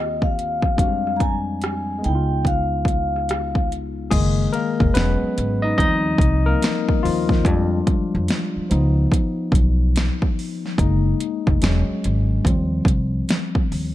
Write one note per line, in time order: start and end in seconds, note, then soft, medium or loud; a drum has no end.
0.00 0.75 D#2 medium
0.00 0.73 A#3 medium
0.00 0.74 C4 soft
0.00 0.76 F4 medium
0.00 0.78 G4 medium
0.00 0.24 D#5 medium
0.22 0.78 F5 medium
0.22 kick medium
0.39 closed hi-hat medium
0.62 kick medium
0.62 cross-stick soft
0.77 2.00 F2 medium
0.77 1.98 G#3 medium
0.77 2.03 C4 medium
0.77 2.04 D4 medium
0.77 1.17 F5 medium
0.77 kick medium
0.77 closed hi-hat medium
0.81 0.88 F#4 medium
0.88 2.08 G3 medium
1.07 cross-stick soft
1.16 1.21 A#5 medium
1.16 kick medium
1.20 2.07 G#5 medium
1.20 closed hi-hat medium
1.62 cross-stick medium
1.62 closed hi-hat medium
1.99 4.05 G#3 medium
1.99 4.07 B3 soft
2.04 4.09 C#2 medium
2.04 4.09 D#4 soft
2.04 2.47 G5 medium
2.04 closed hi-hat medium
2.09 2.14 E4 soft
2.15 4.13 F4 medium
2.45 3.67 F5 medium
2.45 kick medium
2.45 closed hi-hat medium
2.85 kick medium
2.85 closed hi-hat medium
3.16 cross-stick soft
3.29 cross-stick medium
3.29 closed hi-hat medium
3.55 kick medium
3.72 closed hi-hat medium
4.11 4.46 F#1 medium
4.11 4.91 D#3 medium
4.11 4.51 G#3 medium
4.11 4.53 A#3 medium
4.11 4.54 G#4 medium
4.11 kick loud
4.11 closed hi-hat medium
4.11 crash medium
4.53 4.93 A#3 medium
4.53 4.96 A#4 medium
4.53 closed hi-hat medium
4.80 4.93 F1 medium
4.80 kick medium
4.94 5.17 E1 medium
4.94 5.54 F#3 medium
4.94 5.55 G#3 medium
4.94 5.59 B3 medium
4.94 5.55 C#4 medium
4.94 5.65 B4 medium
4.94 snare loud
4.94 closed hi-hat medium
5.23 muted upright bass stroke soft
5.38 5.71 G#1 medium
5.38 closed hi-hat medium
5.62 5.78 D#4 medium
5.62 5.77 D#5 loud
5.78 6.12 D#2 loud
5.78 6.38 F3 medium
5.78 6.38 G3 medium
5.78 6.38 C4 medium
5.78 6.43 D#4 medium
5.78 6.42 D#5 loud
5.78 kick medium
5.78 closed hi-hat medium
6.18 6.53 C2 medium
6.18 kick medium
6.18 closed hi-hat medium
6.46 7.00 A#3 medium
6.46 7.05 A#4 medium
6.62 snare loud
6.62 closed hi-hat medium
6.89 kick medium
7.03 7.46 D#2 medium
7.03 8.25 F3 medium
7.03 8.24 F4 medium
7.03 open hi-hat soft
7.29 kick medium
7.29 snare soft
7.45 7.79 F2 medium
7.45 8.66 G3 medium
7.45 8.66 G#3 medium
7.45 8.66 D4 medium
7.45 kick loud
7.45 closed hi-hat medium
7.87 kick medium
7.87 closed hi-hat medium
8.15 8.26 F2 medium
8.28 snare loud
8.28 closed hi-hat medium
8.56 muted upright bass stroke soft
8.70 9.04 C#2 medium
8.70 10.74 F3 medium
8.70 10.75 B3 medium
8.70 10.75 D#4 medium
8.70 closed hi-hat medium
9.12 kick medium
9.12 closed hi-hat medium
9.52 10.08 B1 medium
9.52 kick loud
9.52 closed hi-hat medium
9.96 snare loud
9.96 closed hi-hat medium
10.22 kick medium
10.39 open hi-hat soft
10.66 snare soft
10.78 11.12 F#1 loud
10.78 11.58 G#3 medium
10.78 11.58 A#3 medium
10.78 11.58 D#4 medium
10.78 kick loud
10.78 closed hi-hat medium
11.20 closed hi-hat medium
11.47 11.60 F1 medium
11.47 kick medium
11.62 11.84 E1 loud
11.62 12.41 F#3 medium
11.62 12.41 G#3 medium
11.62 12.41 C#4 medium
11.62 snare loud
11.62 closed hi-hat medium
11.90 muted upright bass stroke soft
12.04 12.38 G#1 medium
12.04 closed hi-hat medium
12.45 12.79 D#2 loud
12.45 13.66 F3 medium
12.45 13.66 G3 soft
12.45 13.66 C4 medium
12.45 kick medium
12.45 closed hi-hat medium
12.85 13.20 C2 medium
12.85 kick medium
12.85 closed hi-hat medium
13.29 snare loud
13.29 closed hi-hat medium
13.55 kick medium
13.72 13.95 D#2 medium
13.72 open hi-hat soft